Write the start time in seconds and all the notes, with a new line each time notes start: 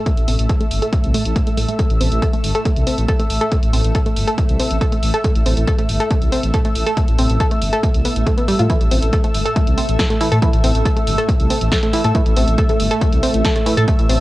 Already playing: A2 A3 A4 E5 E6
0.06 A3, kick, closed hi-hat
0.17 A1, closed hi-hat
0.28 A1 C4, open hi-hat
0.39 A1, closed hi-hat
0.49 A4, kick, closed hi-hat
0.61 A3, closed hi-hat
0.71 G1, open hi-hat
0.82 A4, closed hi-hat
0.93 A3, kick, closed hi-hat
1.04 C2, closed hi-hat
1.14 A3, open hi-hat
1.25 A1, closed hi-hat
1.36 A3, kick, closed hi-hat
1.47 A3, closed hi-hat
1.57 A1 A3, open hi-hat
1.69 A3, closed hi-hat
1.79 A3, kick, closed hi-hat
1.90 A1, closed hi-hat
2.00 A1 C4, open hi-hat
2.12 A1, closed hi-hat
2.22 A4, kick, closed hi-hat
2.33 A3, closed hi-hat
2.44 G1, open hi-hat
2.55 A4, closed hi-hat
2.65 A3, kick, closed hi-hat
2.76 C2, closed hi-hat
2.87 C4, open hi-hat
2.98 A1, closed hi-hat
3.08 A4, kick, closed hi-hat
3.20 A3, closed hi-hat
3.30 A1, open hi-hat
3.41 A4, closed hi-hat
3.52 A3, kick, closed hi-hat
3.63 A1, closed hi-hat
3.73 A1 C4, open hi-hat
3.84 A1, closed hi-hat
3.95 A4, kick, closed hi-hat
4.06 A3, closed hi-hat
4.16 G1, open hi-hat
4.27 A4, closed hi-hat
4.38 A3, kick, closed hi-hat
4.49 C2, closed hi-hat
4.60 C4, open hi-hat
4.71 A1, closed hi-hat
4.81 A4, kick, closed hi-hat
4.92 A3, closed hi-hat
5.03 A1, open hi-hat
5.14 A4, closed hi-hat
5.24 A3, kick, closed hi-hat
5.35 A1, closed hi-hat
5.46 A1 C4, open hi-hat
5.57 A1, closed hi-hat
5.67 A4, kick, closed hi-hat
5.79 A3, closed hi-hat
5.89 G1, open hi-hat
6.00 A4, closed hi-hat
6.11 A3, kick, closed hi-hat
6.22 C2, closed hi-hat
6.32 C4, open hi-hat
6.43 A1, closed hi-hat
6.54 A4, kick, closed hi-hat
6.65 A3, closed hi-hat
6.75 A1, open hi-hat
6.86 A4, closed hi-hat
6.97 A3, kick, closed hi-hat
7.08 A1, closed hi-hat
7.19 A1 C4, open hi-hat
7.30 A1, closed hi-hat
7.40 A4, kick, closed hi-hat
7.51 A3, closed hi-hat
7.62 G1, open hi-hat
7.73 A4, closed hi-hat
7.83 A3, kick, closed hi-hat
7.94 C2, closed hi-hat
8.05 B3, open hi-hat
8.16 A1, closed hi-hat
8.26 A3, kick, closed hi-hat
8.38 B3, closed hi-hat
8.48 G3, open hi-hat
8.59 A2 F4, closed hi-hat
8.70 A2 E3 A3 E4, kick, closed hi-hat
8.81 A1, closed hi-hat
8.91 A1 C4, open hi-hat
9.02 A1, closed hi-hat
9.13 A4, kick, closed hi-hat
9.24 A3, closed hi-hat
9.34 G1, open hi-hat
9.46 A4, closed hi-hat
9.56 A3, kick, closed hi-hat
9.67 C2, closed hi-hat
9.78 C4, open hi-hat
9.89 A1, closed hi-hat
9.99 A4, kick, snare, closed hi-hat
10.10 A3, closed hi-hat
10.21 E3 A3 E4, open hi-hat
10.32 A2 A4, closed hi-hat
10.42 E3 A3 E4, kick, closed hi-hat
10.53 A1, closed hi-hat
10.64 A1 C4, open hi-hat
10.75 A1, closed hi-hat
10.86 A4, kick, closed hi-hat
10.97 A3, closed hi-hat
11.07 G1, open hi-hat
11.18 A4, closed hi-hat
11.29 A3, kick, closed hi-hat
11.40 C2, closed hi-hat
11.50 C4, open hi-hat
11.61 A1, closed hi-hat
11.72 A4, kick, snare, closed hi-hat
11.83 A3, closed hi-hat
11.93 E3 A3 E4, open hi-hat
12.04 A2 A4, closed hi-hat
12.15 E3 A3 E4, kick, closed hi-hat
12.26 A1, closed hi-hat
12.37 A1 C4, open hi-hat
12.48 A1, closed hi-hat
12.58 A4, kick, closed hi-hat
12.69 A3, closed hi-hat
12.80 G1, open hi-hat
12.91 A4, closed hi-hat
13.01 A3, kick, closed hi-hat
13.12 C2, closed hi-hat
13.23 C4, open hi-hat
13.34 A1, closed hi-hat
13.44 A4, kick, snare, closed hi-hat
13.56 A3, closed hi-hat
13.66 E3 A3 E4, open hi-hat
13.77 A2 A4, closed hi-hat
13.88 A3, kick, closed hi-hat
13.99 A1, closed hi-hat
14.09 A1 C4, open hi-hat